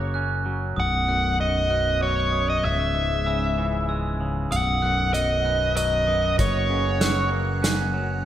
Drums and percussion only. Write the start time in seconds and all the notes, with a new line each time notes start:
4.52 closed hi-hat
5.14 closed hi-hat
5.77 closed hi-hat
6.39 kick, closed hi-hat
7.01 snare, closed hi-hat
7.64 snare, closed hi-hat